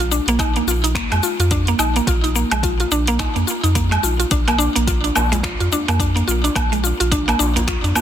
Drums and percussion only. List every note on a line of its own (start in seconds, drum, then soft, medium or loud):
0.00 shaker soft
0.12 shaker medium
0.28 closed hi-hat soft
0.28 shaker soft
0.39 kick loud
0.39 closed hi-hat medium
0.39 low woodblock medium
0.39 shaker soft
0.56 closed hi-hat soft
0.56 shaker soft
0.68 shaker medium
0.84 closed hi-hat soft
0.84 shaker soft
0.95 finger snap medium
0.95 kick loud
0.95 closed hi-hat medium
0.95 shaker soft
1.12 closed hi-hat soft
1.12 low woodblock medium
1.12 shaker soft
1.23 shaker medium
1.40 closed hi-hat soft
1.40 shaker soft
1.51 kick loud
1.51 closed hi-hat medium
1.51 shaker medium
1.67 closed hi-hat soft
1.67 shaker soft
1.79 low woodblock medium
1.79 shaker medium
1.96 closed hi-hat soft
1.96 shaker soft
2.07 kick loud
2.07 closed hi-hat medium
2.07 shaker soft
2.24 closed hi-hat soft
2.24 shaker soft
2.36 shaker medium
2.52 closed hi-hat soft
2.52 low woodblock medium
2.52 shaker soft
2.63 kick loud
2.63 closed hi-hat medium
2.63 shaker medium
2.80 closed hi-hat soft
2.80 shaker soft
2.92 shaker medium
3.07 closed hi-hat soft
3.07 shaker soft
3.19 finger snap medium
3.19 kick loud
3.19 closed hi-hat medium
3.19 low woodblock medium
3.19 shaker soft
3.36 closed hi-hat soft
3.36 shaker soft
3.48 shaker medium
3.64 closed hi-hat soft
3.64 shaker soft
3.75 kick loud
3.75 closed hi-hat medium
3.75 shaker medium
3.92 closed hi-hat soft
3.92 low woodblock medium
3.92 shaker soft
4.04 shaker medium
4.20 closed hi-hat soft
4.20 shaker soft
4.31 kick loud
4.31 closed hi-hat medium
4.31 shaker soft
4.48 closed hi-hat soft
4.48 low woodblock medium
4.48 shaker soft
4.59 darbuka tek soft
4.59 shaker medium
4.76 closed hi-hat soft
4.76 shaker soft
4.87 kick loud
4.87 closed hi-hat medium
4.87 shaker soft
5.04 closed hi-hat soft
5.04 darbuka ka medium
5.04 shaker soft
5.16 darbuka tek medium
5.16 low woodblock medium
5.16 shaker medium
5.32 closed hi-hat soft
5.32 darbuka ka medium
5.32 darbuka dum medium
5.32 shaker soft
5.43 finger snap medium
5.43 kick loud
5.43 closed hi-hat medium
5.43 darbuka tek medium
5.43 shaker soft
5.59 closed hi-hat soft
5.59 darbuka ka soft
5.59 shaker soft
5.72 darbuka dum medium
5.72 shaker medium
5.89 closed hi-hat soft
5.89 low woodblock medium
5.89 shaker soft
5.99 kick loud
5.99 closed hi-hat medium
5.99 shaker soft
6.17 closed hi-hat soft
6.17 shaker soft
6.29 shaker medium
6.44 closed hi-hat soft
6.44 darbuka ka medium
6.44 shaker soft
6.56 kick loud
6.56 closed hi-hat medium
6.56 low woodblock medium
6.56 shaker soft
6.73 closed hi-hat soft
6.73 shaker soft
6.83 darbuka tek soft
6.83 shaker medium
7.01 closed hi-hat soft
7.01 shaker soft
7.12 kick loud
7.12 closed hi-hat medium
7.12 shaker soft
7.29 closed hi-hat soft
7.29 darbuka ka soft
7.29 low woodblock medium
7.29 shaker soft
7.40 darbuka tek medium
7.40 shaker medium
7.56 closed hi-hat soft
7.56 darbuka ka medium
7.56 darbuka dum medium
7.56 shaker soft
7.68 finger snap medium
7.68 kick loud
7.68 closed hi-hat medium
7.68 shaker soft
7.84 closed hi-hat soft
7.84 darbuka tek medium
7.84 shaker soft
7.95 darbuka dum medium
7.95 low woodblock medium
7.95 shaker medium